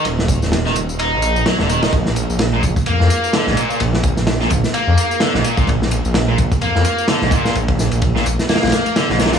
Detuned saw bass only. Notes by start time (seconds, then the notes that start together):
0.05 D#1
0.42 D#1
0.76 D#1
1.13 A#1
1.59 D#1
1.93 A#1
2.30 A#1
2.63 A#1
2.87 F2
3.00 F2
3.47 A#1
3.80 A#1
4.17 A#1
4.51 A#1
4.87 F2
5.34 A#1
5.67 A#1
6.05 A#1
6.38 A#1
6.62 F2
6.75 F2
7.22 A#1
7.56 A#1
7.92 A#1
8.26 A#1
8.63 A#1
9.10 A#1